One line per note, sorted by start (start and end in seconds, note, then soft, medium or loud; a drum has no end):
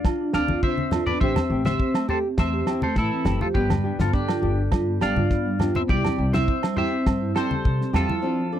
0.00 0.35 D4 medium
0.00 0.30 D5 medium
0.00 0.33 F5 medium
0.04 0.28 D3 medium
0.04 0.18 F4 medium
0.04 kick medium
0.04 snare medium
0.04 low agogo medium
0.21 0.33 D4 medium
0.33 0.46 D2 medium
0.33 0.48 C4 medium
0.33 0.53 C4 soft
0.33 0.53 D4 soft
0.33 0.62 D4 medium
0.33 0.52 A4 medium
0.33 0.62 D5 medium
0.33 0.61 F5 medium
0.33 snare medium
0.33 low agogo medium
0.48 1.07 D3 medium
0.48 0.62 F4 medium
0.48 high conga medium
0.63 1.05 C4 medium
0.63 0.77 D4 medium
0.63 1.04 C5 medium
0.63 1.05 E5 medium
0.63 kick medium
0.63 high conga soft
0.78 0.91 C4 medium
0.78 high conga medium
0.91 1.11 C4 soft
0.91 1.11 D4 soft
0.91 1.06 F4 medium
0.91 1.10 A4 soft
0.91 snare medium
0.91 low conga medium
0.91 low agogo medium
1.06 1.21 B3 medium
1.06 1.20 D4 medium
1.06 1.20 B4 medium
1.06 1.21 D5 medium
1.06 low conga medium
1.20 1.34 A1 medium
1.20 1.40 E3 medium
1.20 1.63 C4 medium
1.20 1.40 C4 medium
1.20 1.40 E4 medium
1.20 1.35 G4 medium
1.20 1.40 G4 medium
1.20 1.62 C5 medium
1.20 1.64 E5 medium
1.20 kick medium
1.36 1.49 C4 medium
1.36 snare medium
1.36 high conga medium
1.36 low conga medium
1.36 low agogo medium
1.50 1.74 A1 medium
1.50 1.64 A3 medium
1.50 1.70 C4 soft
1.50 1.69 G4 medium
1.65 2.07 C4 medium
1.65 1.78 G4 medium
1.65 2.06 C5 medium
1.65 2.06 E5 medium
1.65 snare medium
1.65 high conga medium
1.79 1.93 C4 medium
1.79 kick medium
1.94 2.07 A3 medium
1.94 snare medium
1.94 low agogo medium
2.08 2.23 A3 medium
2.08 2.28 C4 soft
2.08 2.22 G4 medium
2.08 2.27 G4 soft
2.08 2.17 A4 medium
2.08 2.18 C5 medium
2.08 low conga medium
2.24 2.37 C4 medium
2.38 2.61 E2 loud
2.38 2.52 A3 medium
2.38 2.81 C4 medium
2.38 2.80 C5 medium
2.38 2.80 E5 medium
2.38 kick medium
2.38 snare medium
2.38 low agogo medium
2.53 2.66 G4 medium
2.67 2.81 C4 medium
2.67 2.87 C4 soft
2.67 2.86 E4 soft
2.67 2.86 G4 medium
2.67 snare medium
2.67 low agogo medium
2.82 2.95 A3 medium
2.82 2.97 A3 medium
2.82 2.96 A4 medium
2.82 2.97 C5 medium
2.82 high conga medium
2.96 3.08 A2 loud
2.96 3.39 E3 medium
2.96 3.39 E4 medium
2.96 3.41 A4 medium
2.96 kick medium
2.96 snare soft
3.11 3.24 C4 medium
3.25 3.38 F#1 medium
3.25 3.39 A3 medium
3.25 3.45 C4 soft
3.25 3.45 E4 soft
3.25 3.44 G4 medium
3.25 snare medium
3.25 low conga medium
3.25 low agogo medium
3.41 3.59 F3 medium
3.41 3.47 F4 medium
3.41 3.54 G4 medium
3.41 3.47 A4 medium
3.41 high conga medium
3.54 3.67 G1 medium
3.54 3.73 F3 medium
3.54 4.01 G3 medium
3.54 3.69 B3 medium
3.54 3.74 B3 medium
3.54 3.74 D4 medium
3.54 3.96 G4 medium
3.54 3.74 G4 medium
3.54 4.01 B4 medium
3.54 kick medium
3.70 3.93 G2 medium
3.70 3.83 G3 medium
3.70 snare medium
3.70 high conga medium
3.70 low conga medium
3.70 low agogo medium
3.84 4.03 B3 soft
3.84 4.03 D4 medium
3.84 4.02 G4 medium
3.99 4.34 G2 medium
3.99 4.18 F3 medium
3.99 4.12 B3 medium
3.99 4.13 F4 medium
3.99 4.14 A4 medium
3.99 snare medium
3.99 high conga medium
4.13 5.03 D3 medium
4.13 4.97 D4 medium
4.13 5.01 G4 medium
4.13 kick medium
4.13 snare soft
4.28 4.41 F4 medium
4.28 snare medium
4.28 low agogo medium
4.42 4.66 G1 medium
4.42 4.62 B3 soft
4.42 4.61 D4 soft
4.42 4.61 G4 medium
4.42 low conga medium
4.72 4.95 G2 medium
4.72 4.86 F4 medium
4.72 kick medium
4.72 snare medium
4.72 low agogo medium
4.87 5.00 B3 medium
5.01 5.13 G1 medium
5.01 5.15 G3 medium
5.01 5.21 B3 soft
5.01 5.20 D4 soft
5.01 5.73 D4 medium
5.01 5.19 G4 medium
5.01 5.72 D5 medium
5.01 5.76 F5 medium
5.01 snare medium
5.01 low agogo medium
5.16 5.74 G2 medium
5.16 5.29 F4 medium
5.16 high conga medium
5.31 5.44 B3 medium
5.31 kick medium
5.31 snare soft
5.46 5.58 G3 medium
5.59 5.79 B3 soft
5.59 5.78 D4 soft
5.59 5.74 F4 medium
5.59 5.78 G4 soft
5.59 snare medium
5.59 low conga medium
5.59 low agogo medium
5.75 5.87 B3 medium
5.75 5.93 C4 medium
5.75 5.81 C5 medium
5.75 5.81 E5 medium
5.75 high conga medium
5.89 6.02 C2 loud
5.89 6.07 G3 medium
5.89 6.35 G3 medium
5.89 6.03 E4 medium
5.89 6.08 E4 medium
5.89 6.31 G4 medium
5.89 6.08 G4 medium
5.89 6.34 D5 medium
5.89 muted nylon-string guitar stroke medium
5.89 kick medium
6.04 6.17 C4 medium
6.04 snare medium
6.04 low conga medium
6.04 low agogo medium
6.18 6.42 C2 medium
6.18 6.32 G3 medium
6.18 6.38 C4 soft
6.18 6.37 E4 soft
6.18 6.36 G4 medium
6.33 6.46 E4 medium
6.33 6.74 C5 medium
6.33 6.77 E5 medium
6.33 snare medium
6.33 high conga medium
6.38 6.76 C4 medium
6.47 6.61 C4 medium
6.47 kick medium
6.63 6.75 G3 medium
6.63 snare medium
6.63 low agogo medium
6.76 7.33 C4 medium
6.76 6.90 E4 medium
6.76 6.96 E4 soft
6.76 6.95 G4 soft
6.76 7.31 C5 medium
6.76 7.37 E5 medium
6.76 muted nylon-string guitar stroke soft
6.76 low conga medium
6.92 7.05 C4 medium
7.06 7.30 G2 loud
7.06 7.20 G3 medium
7.06 kick medium
7.06 snare medium
7.06 low agogo medium
7.22 7.34 E4 medium
7.35 7.92 G3 medium
7.35 7.49 C4 medium
7.35 7.55 C4 soft
7.35 7.54 E4 soft
7.35 7.54 G4 soft
7.35 7.90 A4 medium
7.35 7.95 C5 medium
7.35 snare medium
7.35 low agogo medium
7.51 high conga medium
7.65 7.77 C3 loud
7.65 kick medium
7.80 7.93 C4 medium
7.80 snare soft
7.93 8.06 E2 medium
7.93 8.08 G3 medium
7.93 8.13 C4 soft
7.93 8.12 E4 soft
7.93 8.60 F4 medium
7.93 8.12 G4 soft
7.93 8.60 A4 medium
7.93 snare medium
7.93 low conga medium
7.93 low agogo medium
7.97 8.60 F3 medium
8.09 8.22 E4 medium
8.09 high conga medium
8.22 8.41 F3 medium
8.22 8.41 C4 medium
8.22 8.38 C4 medium
8.22 8.42 D4 medium
8.22 8.42 A4 medium
8.39 8.52 F3 medium
8.52 8.60 C4 soft
8.52 8.60 D4 medium
8.52 8.60 D4 soft
8.52 8.60 A4 medium